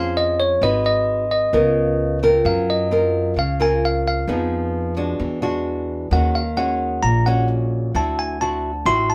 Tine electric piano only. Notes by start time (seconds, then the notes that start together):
Already playing: F5
0.17 D#5
0.40 C#5
0.63 D#5
0.86 D#5
1.31 D#5
2.46 F5
2.70 D#5
3.39 F5
3.62 G#5
3.85 F5
4.08 F5
6.13 F#5
6.35 F5
6.57 F#5
7.03 A#5
7.26 F#5
7.96 A5
8.19 G#5
8.41 A5
8.86 C6
9.10 A5